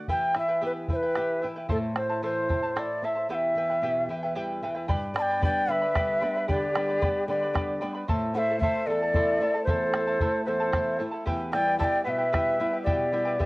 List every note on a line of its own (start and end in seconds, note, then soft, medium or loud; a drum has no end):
0.08 1.65 E3 medium
0.08 0.35 E4 medium
0.08 0.36 G4 medium
0.08 0.35 B4 medium
0.08 0.34 E5 medium
0.08 0.36 G5 medium
0.08 0.35 G5 medium
0.08 bombo low medium
0.35 0.49 E4 soft
0.35 0.62 E4 soft
0.35 0.48 B4 medium
0.35 0.49 E5 medium
0.35 0.48 G5 medium
0.35 bombo rim medium
0.39 0.63 E5 medium
0.49 0.62 E4 soft
0.49 0.62 B4 soft
0.49 0.62 G5 medium
0.62 0.89 B3 soft
0.62 0.88 E4 medium
0.62 0.89 G4 medium
0.62 0.88 B4 medium
0.62 0.88 E5 medium
0.62 0.89 G5 medium
0.66 0.72 B4 medium
0.89 1.03 E4 soft
0.89 1.16 E4 soft
0.89 1.02 B4 soft
0.89 1.03 E5 medium
0.89 1.02 G5 medium
0.89 bombo low medium
0.93 1.47 B4 medium
0.93 0.97 C5 medium
1.03 1.15 E4 soft
1.03 1.16 B4 soft
1.03 1.16 G5 soft
1.16 1.42 E4 medium
1.16 1.43 G4 medium
1.16 1.42 B4 medium
1.16 1.41 E5 medium
1.16 1.42 G5 medium
1.16 bombo rim medium
1.42 1.56 E4 medium
1.42 1.70 E4 medium
1.42 1.56 B4 medium
1.42 1.56 E5 medium
1.42 1.55 G5 medium
1.56 1.68 E4 soft
1.56 1.69 B4 soft
1.56 1.69 G5 soft
1.69 3.26 A2 medium
1.69 1.95 E4 medium
1.69 1.96 A4 medium
1.69 1.77 A4 medium
1.69 1.96 C5 medium
1.69 1.95 E5 medium
1.69 1.96 A5 medium
1.69 bombo low medium
1.96 2.22 C4 soft
1.96 2.09 E4 soft
1.96 2.08 C5 medium
1.96 2.21 C5 medium
1.96 2.09 E5 soft
1.96 2.08 A5 medium
1.96 bombo rim medium
2.09 2.22 E4 soft
2.09 2.22 C5 soft
2.09 2.23 A5 medium
2.22 2.49 E3 soft
2.22 2.49 E4 medium
2.22 2.49 A4 medium
2.22 2.48 C5 medium
2.22 2.81 C5 medium
2.22 2.48 E5 medium
2.22 2.49 A5 medium
2.49 2.75 C4 medium
2.49 2.63 E4 medium
2.49 2.62 C5 medium
2.49 2.62 E5 soft
2.49 2.61 A5 medium
2.49 bombo low medium
2.63 2.74 E4 soft
2.63 2.75 C5 soft
2.63 2.75 A5 soft
2.76 3.03 E4 medium
2.76 3.02 E4 medium
2.76 3.03 A4 medium
2.76 3.03 C5 medium
2.76 3.06 D5 medium
2.76 3.03 E5 medium
2.76 3.03 A5 medium
2.76 bombo rim medium
3.02 3.28 C4 soft
3.02 3.16 E4 medium
3.02 3.15 C5 medium
3.02 3.16 E5 soft
3.02 3.30 E5 medium
3.02 3.14 A5 medium
3.15 3.29 E4 soft
3.15 3.29 C5 soft
3.15 3.29 A5 soft
3.29 4.85 E2 medium
3.29 3.56 E4 medium
3.29 3.56 G4 medium
3.29 3.56 B4 medium
3.29 3.56 E5 medium
3.29 3.35 F#5 medium
3.29 3.57 G5 medium
3.34 4.32 E5 medium
3.55 3.81 E3 soft
3.55 3.69 E4 soft
3.55 3.69 B4 medium
3.55 3.70 E5 medium
3.55 3.68 G5 medium
3.70 3.82 E4 soft
3.70 3.82 B4 soft
3.70 3.82 G5 soft
3.82 4.08 B2 soft
3.82 4.09 E4 medium
3.82 4.09 G4 medium
3.82 4.09 B4 medium
3.82 4.08 E5 medium
3.82 4.09 G5 medium
4.09 4.35 E3 soft
4.09 4.23 E4 medium
4.09 4.23 B4 medium
4.09 4.23 E5 medium
4.09 4.22 G5 medium
4.23 4.34 E4 soft
4.23 4.35 B4 soft
4.23 4.35 G5 medium
4.35 4.62 G3 soft
4.35 4.62 E4 medium
4.35 4.62 G4 medium
4.35 4.62 B4 medium
4.35 4.61 E5 medium
4.35 4.63 G5 medium
4.62 4.88 E3 soft
4.62 4.75 E4 medium
4.62 4.75 B4 medium
4.62 4.76 E5 medium
4.62 4.74 G5 medium
4.75 4.88 E4 soft
4.75 4.88 B4 soft
4.75 4.87 G5 medium
4.88 5.41 G2 medium
4.88 5.15 G4 medium
4.88 5.15 B4 medium
4.88 5.16 D5 medium
4.88 5.15 G5 medium
4.88 5.16 B5 medium
4.88 bombo low medium
5.14 5.40 G3 soft
5.14 5.41 B3 soft
5.14 5.41 D4 medium
5.14 5.30 B4 medium
5.14 5.29 D5 medium
5.14 5.41 D5 medium
5.14 5.29 G5 medium
5.14 5.29 B5 medium
5.14 bombo rim medium
5.19 5.42 G5 loud
5.19 5.23 A5 loud
5.30 5.42 B4 soft
5.30 5.42 D5 soft
5.30 5.42 B5 soft
5.41 5.84 G3 medium
5.41 5.85 B3 soft
5.41 5.85 D4 medium
5.41 5.69 G4 medium
5.41 5.69 B4 medium
5.41 5.69 D5 medium
5.41 5.71 D5 medium
5.41 5.68 G5 medium
5.41 5.73 G5 medium
5.41 5.69 B5 medium
5.41 bombo low medium
5.68 6.20 D3 medium
5.68 6.48 B4 medium
5.68 5.82 B4 soft
5.68 5.81 D5 medium
5.68 6.49 E5 medium
5.68 5.82 G5 soft
5.68 5.80 B5 medium
5.82 5.94 B4 soft
5.82 5.95 D5 soft
5.82 5.95 B5 medium
5.94 6.21 G3 soft
5.94 6.21 B3 soft
5.94 6.22 D4 medium
5.94 6.22 G4 medium
5.94 6.20 B4 medium
5.94 6.21 D5 medium
5.94 6.19 G5 medium
5.94 6.21 B5 medium
5.94 bombo rim medium
5.94 bombo low medium
6.21 6.65 G3 soft
6.21 6.65 B3 soft
6.21 6.65 D4 soft
6.21 6.35 B4 medium
6.21 6.34 D5 medium
6.21 6.35 G5 medium
6.21 6.34 B5 medium
6.35 6.47 B4 soft
6.35 6.48 D5 soft
6.35 6.48 B5 soft
6.48 7.01 D3 medium
6.48 6.75 G4 medium
6.48 7.25 G4 medium
6.48 6.75 B4 medium
6.48 6.75 D5 medium
6.48 7.25 D5 medium
6.48 6.74 G5 medium
6.48 6.75 B5 medium
6.48 bombo low medium
6.75 7.00 G3 soft
6.75 7.01 B3 soft
6.75 7.01 D4 soft
6.75 6.89 B4 medium
6.75 6.89 D5 medium
6.75 6.88 G5 medium
6.75 6.88 B5 medium
6.75 bombo rim medium
6.89 7.01 B4 soft
6.89 7.01 D5 soft
6.89 7.01 B5 soft
7.01 7.44 G3 medium
7.01 7.44 B3 soft
7.01 7.45 D4 medium
7.01 7.28 G4 medium
7.01 7.28 B4 medium
7.01 7.28 D5 medium
7.01 7.27 G5 medium
7.01 7.29 B5 medium
7.01 bombo low medium
7.28 7.80 D3 medium
7.28 7.85 G4 medium
7.28 7.42 B4 medium
7.28 7.85 D5 medium
7.28 7.42 D5 medium
7.28 7.42 G5 soft
7.28 7.41 B5 medium
7.42 7.54 B4 soft
7.42 7.54 D5 soft
7.42 7.54 B5 soft
7.53 7.81 G3 soft
7.53 7.81 B3 soft
7.53 7.81 D4 medium
7.53 7.81 G4 medium
7.53 7.80 B4 medium
7.53 7.80 D5 medium
7.53 7.80 G5 medium
7.53 7.81 B5 medium
7.53 bombo rim medium
7.53 bombo low medium
7.81 8.03 G3 soft
7.81 8.03 B3 soft
7.81 8.03 D4 medium
7.81 7.95 B4 medium
7.81 7.95 D5 medium
7.81 7.95 G5 medium
7.81 7.93 B5 medium
7.95 8.08 B4 soft
7.95 8.09 D5 soft
7.95 8.08 B5 medium
8.08 8.60 A2 medium
8.08 8.35 E4 medium
8.08 8.35 A4 loud
8.08 8.35 C5 medium
8.08 8.34 E5 medium
8.08 8.36 A5 medium
8.08 bombo low medium
8.34 8.58 A3 soft
8.34 8.58 C4 soft
8.34 8.58 E4 medium
8.34 8.49 E4 medium
8.34 8.49 A4 medium
8.34 8.60 C5 medium
8.34 8.48 E5 soft
8.34 8.39 F#5 medium
8.34 8.49 A5 medium
8.38 8.59 E5 loud
8.50 8.62 E4 soft
8.50 8.62 A4 soft
8.50 8.62 A5 soft
8.59 9.03 A3 soft
8.59 9.03 C4 soft
8.59 9.03 E4 soft
8.59 8.89 C5 medium
8.59 8.88 E5 medium
8.59 8.89 E5 medium
8.59 bombo low medium
8.63 8.88 E4 medium
8.63 8.89 A4 medium
8.63 8.89 A5 medium
8.86 9.39 E2 medium
8.86 9.02 E4 soft
8.86 9.65 A4 medium
8.86 9.02 A4 medium
8.86 9.64 D5 loud
8.86 9.02 E5 medium
8.91 9.01 A5 medium
9.02 9.15 E4 soft
9.02 9.15 A4 soft
9.02 9.15 A5 soft
9.13 9.39 A3 soft
9.13 9.39 C4 soft
9.13 9.40 E4 medium
9.13 9.41 E4 medium
9.13 9.42 A4 medium
9.13 9.42 C5 medium
9.13 9.41 E5 medium
9.13 9.42 A5 medium
9.13 bombo low medium
9.40 9.83 A3 soft
9.40 9.83 C4 soft
9.40 9.84 E4 medium
9.40 9.55 E4 soft
9.40 9.54 A4 medium
9.40 9.55 E5 medium
9.40 9.53 A5 medium
9.54 9.67 E4 soft
9.54 9.67 A4 soft
9.54 9.68 A5 soft
9.64 10.19 E2 medium
9.64 9.93 E4 medium
9.64 9.94 A4 medium
9.64 9.71 B4 medium
9.64 10.42 C5 medium
9.64 9.94 C5 medium
9.64 9.93 E5 medium
9.64 bombo low medium
9.69 10.42 A4 medium
9.69 9.94 A5 medium
9.93 10.19 A3 soft
9.93 10.20 C4 soft
9.93 10.20 E4 soft
9.93 10.07 E4 soft
9.93 10.07 A4 medium
9.93 10.08 E5 soft
9.93 10.06 A5 medium
9.93 bombo rim medium
10.07 10.21 E4 soft
10.07 10.21 A4 soft
10.07 10.21 A5 medium
10.20 10.63 A3 medium
10.20 10.64 C4 soft
10.20 10.64 E4 medium
10.20 10.47 E4 medium
10.20 10.47 A4 medium
10.20 10.48 C5 medium
10.20 10.46 E5 medium
10.20 10.47 A5 medium
10.20 bombo rim soft
10.20 bombo low medium
10.45 10.99 E2 medium
10.45 10.60 E4 medium
10.45 10.60 A4 medium
10.45 11.02 A4 medium
10.45 10.50 B4 soft
10.45 11.03 C5 medium
10.45 10.61 E5 medium
10.45 10.59 A5 medium
10.45 bombo rim soft
10.60 10.72 E4 soft
10.60 10.72 A4 soft
10.60 10.72 A5 medium
10.72 10.99 A3 soft
10.72 11.00 C4 soft
10.72 10.97 E4 medium
10.72 11.00 E4 soft
10.72 10.98 A4 medium
10.72 11.00 C5 medium
10.72 10.98 E5 medium
10.72 10.99 A5 medium
10.72 bombo rim medium
10.72 bombo low medium
10.99 11.22 A3 soft
10.99 11.22 C4 soft
10.99 11.12 E4 medium
10.99 11.22 E4 medium
10.99 11.11 A4 medium
10.99 11.13 E5 medium
10.99 11.10 A5 medium
11.11 11.25 E4 soft
11.11 11.26 A4 soft
11.11 11.26 A5 medium
11.26 11.79 E2 medium
11.26 11.51 E4 medium
11.26 11.53 G4 medium
11.26 11.52 B4 medium
11.26 11.51 E5 medium
11.26 11.52 G5 medium
11.26 bombo low medium
11.52 11.79 G3 soft
11.52 11.80 B3 soft
11.52 11.66 E4 medium
11.52 11.80 E4 medium
11.52 11.66 B4 medium
11.52 11.78 D5 medium
11.52 11.66 E5 medium
11.52 11.78 G5 loud
11.52 11.65 G5 medium
11.52 bombo rim medium
11.66 11.78 E4 soft
11.66 11.79 B4 soft
11.66 11.79 G5 medium
11.78 12.23 G3 soft
11.78 12.23 B3 soft
11.78 12.04 E4 medium
11.78 12.24 E4 medium
11.78 12.06 G4 medium
11.78 12.05 B4 medium
11.78 12.03 D5 medium
11.78 12.03 E5 medium
11.78 12.05 G5 medium
11.78 11.85 A5 medium
11.78 bombo low medium
11.84 12.05 G5 medium
12.04 12.58 B2 medium
12.04 12.19 E4 medium
12.04 12.81 B4 medium
12.04 12.18 B4 medium
12.04 12.19 E5 soft
12.04 12.10 F#5 medium
12.04 12.17 G5 medium
12.09 12.82 E5 loud
12.18 12.32 E4 soft
12.18 12.32 B4 soft
12.18 12.33 G5 soft
12.32 12.59 G3 soft
12.32 12.59 B3 soft
12.32 12.58 E4 medium
12.32 12.60 E4 medium
12.32 12.60 G4 medium
12.32 12.59 B4 medium
12.32 12.58 E5 medium
12.32 12.59 G5 medium
12.32 bombo rim medium
12.32 bombo low medium
12.59 13.02 G3 medium
12.59 13.03 B3 soft
12.59 12.73 E4 medium
12.59 13.03 E4 medium
12.59 12.72 B4 medium
12.59 12.73 E5 medium
12.59 12.72 G5 medium
12.73 12.85 E4 soft
12.73 12.86 B4 soft
12.73 12.86 G5 soft
12.82 13.38 B2 medium
12.82 13.46 G4 medium
12.82 13.46 D5 medium
12.82 13.11 E5 medium
12.86 13.12 E4 medium
12.86 13.13 G4 medium
12.86 13.12 B4 medium
12.86 13.12 G5 medium
12.86 bombo low medium
13.12 13.39 G3 soft
13.12 13.39 B3 soft
13.12 13.26 E4 medium
13.12 13.40 E4 medium
13.12 13.25 B4 medium
13.12 13.26 E5 soft
13.12 13.24 G5 medium
13.25 13.38 E4 soft
13.25 13.39 B4 medium
13.25 13.39 G5 medium
13.39 13.46 G3 soft
13.39 13.46 B3 soft
13.39 13.46 E4 medium
13.39 13.46 G4 medium
13.39 13.46 B4 medium
13.39 13.46 E5 medium
13.39 13.46 G5 medium
13.39 bombo low medium